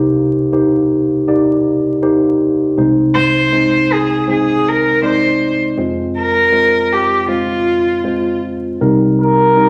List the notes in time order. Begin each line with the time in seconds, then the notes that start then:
Already playing: C2 C3 A#3 D#4 G4 C5
0.52 A#3 D#4 G4 C5
1.27 A#3 D#4 G4 D5
2.02 A#3 D#4 G4 C5
2.77 C2 C3 G#3 C4 D#4 C5
3.14 C5
3.52 G#3 C4 D#4 C5
3.93 G#4
4.28 G#3 C4 D#4 G#4 C5
4.68 A#4
5.02 G#3 C4 D#4 C5 D5
5.78 F1 F2 G#3 C4 F4 C5
6.18 A#4
6.52 G#3 C4 F4 C5
6.92 G4
7.28 G#3 C4 F4 C5
8.04 G#3 C4 F4 C5
8.81 C2 C3 G3 C4 D#4 A#4
9.22 A#4
9.56 G3 C4 D#4 A#4